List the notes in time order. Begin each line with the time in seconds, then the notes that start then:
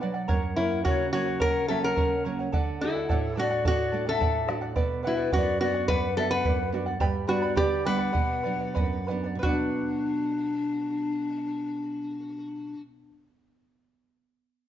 Already playing: B2
0.01 F#3 B4 D5 F#5
0.14 D5 F#5
0.28 F#2 A#4 C#5 F#5, bombo low
0.56 F#3 A#3 C#4 E4 A#4 C#5 F#5
0.70 C#5 F#5
0.84 C#3 F#4 A#4 C#5 F#5, bombo low
1.13 F#3 A#3 C#4 F#4 A#4 C#5 F#5
1.26 C#5 F#5
1.40 C#3 A#4 C#5 F#5, bombo low
1.68 F#3 A#3 C#4 A4 A#4 C#5 E5 F#5
1.83 A#4 C#5 F#5
1.96 C#3 A#4 C#5 F#5, bombo low
2.24 F#3 A#3 C#4 A#4 C#5 F#5
2.39 C#5 F#5
2.52 D3 A4 D5 F#5, bombo low
2.81 A3 D4 E4 F#4 A4 D5 F#5
2.95 D5 F#5
3.09 A2 A4 D5 F#5, bombo low
3.35 A3 D4 F#4 A4 D5 F#5
3.40 D5
3.51 D5 F#5
3.65 A2 F#4 A4 D5 F#5, bombo low
3.92 A3 D4 F#4 A4 D5 F#5
4.07 A4 D5 E5 F#5
4.20 A2 A4 D5 F#5, bombo low
4.47 A3 D4 F#4 A4 D5 F#5, bombo rim
4.61 D5 F#5
4.76 B2 B4 D5 F#5, bombo low
5.03 B3 E4 B4 D5 F#5
5.07 D4 F#4
5.17 D5 F#5
5.32 F#2 F#4 B4 D5 F#5, bombo low
5.36 D5
5.60 B3 D4 F#4 B4 D5 F#5
5.74 D5 F#5
5.88 F#2 B4 D5 F#5, bombo low
6.17 B3 D4 F#4 A4 B4 D5 E5 F#5
6.30 B4 D5 F#5
6.45 F#2 B4 D5 F#5, bombo low
6.72 B3 D4 F#4 B4 D5 F#5
6.86 D5 F#5
7.00 G2 G4 B4 D5 G5 B5, bombo low
7.27 G3 B3 D4 F#4 B4 D5 G5 B5
7.42 B4 D5 B5
7.56 D3 G4 B4 D5 G5 B5, bombo low
7.84 G3 B3 D4 B4 D5 F#5 G5 B5
7.98 B4 D5 B5
8.13 B2 B4 D5 F#5, bombo low
8.43 F#3 B3 D4 B4 D5 F#5
8.59 D5 F#5
8.75 F#2 B4 D5 F#5, bombo low
9.07 F#3 B3 B4 D5 F#5
9.11 D4
9.24 D5 F#5
9.35 B2 B4
9.42 F#3 D4 F#4 D5, bombo low
9.47 B3 F#5
9.53 D4